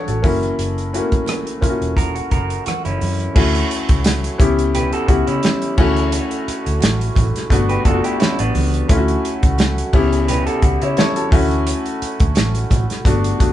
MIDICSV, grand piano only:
0, 0, Header, 1, 2, 480
1, 0, Start_track
1, 0, Tempo, 693642
1, 402, Time_signature, 4, 2, 24, 8
1, 9361, End_track
2, 0, Start_track
2, 0, Title_t, "Grand piano"
2, 0, Program_c, 0, 0
2, 0, Control_c, 0, 64, 127
2, 0, Note_on_c, 0, 57, 79
2, 0, Note_on_c, 0, 61, 66
2, 0, Note_on_c, 0, 62, 66
2, 0, Note_on_c, 0, 66, 46
2, 0, Note_on_c, 0, 69, 57
2, 0, Note_on_c, 0, 71, 56
2, 0, Note_on_c, 0, 73, 66
2, 55, Note_off_c, 0, 69, 0
2, 55, Note_on_c, 0, 69, 59
2, 61, Note_off_c, 0, 66, 0
2, 61, Note_on_c, 0, 66, 49
2, 155, Note_on_c, 0, 58, 88
2, 158, Note_off_c, 0, 66, 0
2, 159, Note_off_c, 0, 61, 0
2, 159, Note_on_c, 0, 61, 73
2, 165, Note_on_c, 0, 64, 79
2, 168, Note_on_c, 0, 66, 81
2, 172, Note_off_c, 0, 62, 0
2, 172, Note_off_c, 0, 73, 0
2, 172, Control_c, 0, 64, 0
2, 174, Note_off_c, 0, 57, 0
2, 176, Note_off_c, 0, 71, 0
2, 281, Note_off_c, 0, 69, 0
2, 289, Control_c, 0, 64, 127
2, 550, Note_off_c, 0, 58, 0
2, 552, Note_off_c, 0, 61, 0
2, 555, Note_off_c, 0, 64, 0
2, 557, Note_off_c, 0, 66, 0
2, 643, Note_on_c, 0, 57, 67
2, 648, Note_on_c, 0, 61, 66
2, 654, Note_on_c, 0, 64, 67
2, 657, Note_on_c, 0, 66, 83
2, 686, Note_on_c, 0, 58, 77
2, 691, Note_off_c, 0, 57, 0
2, 997, Note_off_c, 0, 61, 0
2, 1001, Note_off_c, 0, 64, 0
2, 1002, Note_off_c, 0, 66, 0
2, 1016, Note_off_c, 0, 58, 0
2, 1114, Note_on_c, 0, 58, 72
2, 1117, Note_on_c, 0, 61, 68
2, 1122, Note_on_c, 0, 64, 57
2, 1129, Note_on_c, 0, 65, 68
2, 1174, Note_off_c, 0, 65, 0
2, 1174, Note_on_c, 0, 66, 76
2, 1809, Note_off_c, 0, 58, 0
2, 1810, Note_off_c, 0, 61, 0
2, 1812, Note_off_c, 0, 64, 0
2, 1839, Note_off_c, 0, 66, 0
2, 2315, Note_on_c, 0, 57, 76
2, 2321, Note_on_c, 0, 61, 69
2, 2325, Note_on_c, 0, 64, 79
2, 2329, Control_c, 0, 64, 0
2, 2330, Note_on_c, 0, 66, 87
2, 2459, Control_c, 0, 64, 127
2, 3008, Note_off_c, 0, 57, 0
2, 3011, Note_off_c, 0, 61, 0
2, 3013, Note_off_c, 0, 64, 0
2, 3016, Note_off_c, 0, 66, 0
2, 3033, Note_on_c, 0, 59, 84
2, 3038, Note_on_c, 0, 61, 74
2, 3043, Note_on_c, 0, 64, 73
2, 3048, Control_c, 0, 64, 0
2, 3049, Note_on_c, 0, 67, 94
2, 3177, Control_c, 0, 64, 127
2, 3428, Note_off_c, 0, 59, 0
2, 3430, Note_off_c, 0, 61, 0
2, 3433, Note_off_c, 0, 64, 0
2, 3436, Note_off_c, 0, 67, 0
2, 3509, Note_on_c, 0, 59, 70
2, 3514, Note_on_c, 0, 61, 67
2, 3520, Note_on_c, 0, 64, 65
2, 3525, Note_on_c, 0, 67, 69
2, 3991, Note_off_c, 0, 61, 0
2, 3993, Note_off_c, 0, 59, 0
2, 3995, Note_on_c, 0, 57, 87
2, 3996, Note_off_c, 0, 64, 0
2, 4001, Note_off_c, 0, 67, 0
2, 4002, Note_on_c, 0, 61, 89
2, 4007, Control_c, 0, 64, 0
2, 4007, Note_on_c, 0, 64, 84
2, 4012, Note_on_c, 0, 66, 108
2, 4108, Control_c, 0, 64, 127
2, 4767, Note_off_c, 0, 57, 0
2, 4770, Note_off_c, 0, 61, 0
2, 4773, Note_off_c, 0, 64, 0
2, 4775, Note_off_c, 0, 66, 0
2, 5189, Note_on_c, 0, 57, 83
2, 5196, Note_on_c, 0, 59, 85
2, 5202, Note_on_c, 0, 62, 71
2, 5206, Control_c, 0, 64, 0
2, 5206, Note_on_c, 0, 66, 100
2, 5309, Control_c, 0, 64, 127
2, 5370, Note_off_c, 0, 57, 0
2, 5373, Note_off_c, 0, 59, 0
2, 5376, Note_off_c, 0, 62, 0
2, 5378, Note_off_c, 0, 66, 0
2, 5432, Note_on_c, 0, 57, 69
2, 5439, Note_on_c, 0, 59, 72
2, 5443, Note_on_c, 0, 62, 69
2, 5450, Note_on_c, 0, 65, 62
2, 5491, Note_off_c, 0, 65, 0
2, 5494, Note_on_c, 0, 66, 86
2, 5952, Note_off_c, 0, 57, 0
2, 5956, Note_off_c, 0, 59, 0
2, 5958, Note_off_c, 0, 62, 0
2, 5983, Note_off_c, 0, 66, 0
2, 6148, Note_on_c, 0, 57, 80
2, 6154, Note_on_c, 0, 61, 80
2, 6158, Note_on_c, 0, 64, 77
2, 6164, Control_c, 0, 64, 0
2, 6166, Note_on_c, 0, 65, 68
2, 6209, Note_off_c, 0, 65, 0
2, 6210, Note_on_c, 0, 66, 92
2, 6269, Control_c, 0, 64, 127
2, 6842, Note_off_c, 0, 57, 0
2, 6845, Note_off_c, 0, 61, 0
2, 6847, Note_off_c, 0, 64, 0
2, 6871, Note_on_c, 0, 59, 85
2, 6873, Note_off_c, 0, 66, 0
2, 6876, Note_on_c, 0, 61, 75
2, 6882, Control_c, 0, 64, 0
2, 6882, Note_on_c, 0, 64, 80
2, 6888, Note_on_c, 0, 67, 91
2, 7004, Control_c, 0, 64, 127
2, 7265, Note_off_c, 0, 59, 0
2, 7267, Note_off_c, 0, 61, 0
2, 7270, Note_off_c, 0, 64, 0
2, 7273, Note_off_c, 0, 67, 0
2, 7489, Note_on_c, 0, 76, 56
2, 7495, Note_on_c, 0, 73, 51
2, 7590, Note_off_c, 0, 73, 0
2, 7592, Note_off_c, 0, 76, 0
2, 7600, Note_on_c, 0, 73, 78
2, 7605, Note_on_c, 0, 69, 66
2, 7714, Note_off_c, 0, 69, 0
2, 7721, Note_off_c, 0, 73, 0
2, 7724, Note_on_c, 0, 69, 70
2, 7728, Note_on_c, 0, 66, 56
2, 7825, Note_on_c, 0, 57, 87
2, 7832, Note_off_c, 0, 66, 0
2, 7833, Note_on_c, 0, 61, 84
2, 7836, Note_on_c, 0, 64, 82
2, 7842, Note_on_c, 0, 66, 98
2, 7845, Control_c, 0, 64, 0
2, 7953, Note_off_c, 0, 69, 0
2, 7972, Control_c, 0, 64, 127
2, 8603, Note_off_c, 0, 57, 0
2, 8607, Note_off_c, 0, 61, 0
2, 8608, Note_off_c, 0, 64, 0
2, 8611, Note_off_c, 0, 66, 0
2, 9028, Note_on_c, 0, 57, 78
2, 9032, Note_on_c, 0, 59, 70
2, 9040, Note_on_c, 0, 62, 81
2, 9044, Note_on_c, 0, 66, 92
2, 9046, Control_c, 0, 64, 0
2, 9169, Control_c, 0, 64, 127
2, 9210, Note_off_c, 0, 57, 0
2, 9212, Note_off_c, 0, 59, 0
2, 9216, Note_off_c, 0, 62, 0
2, 9218, Note_off_c, 0, 66, 0
2, 9265, Note_on_c, 0, 57, 67
2, 9271, Note_on_c, 0, 59, 63
2, 9276, Note_on_c, 0, 62, 72
2, 9280, Note_on_c, 0, 66, 80
2, 9361, Note_off_c, 0, 57, 0
2, 9361, Note_off_c, 0, 59, 0
2, 9361, Note_off_c, 0, 62, 0
2, 9361, Note_off_c, 0, 66, 0
2, 9361, End_track
0, 0, End_of_file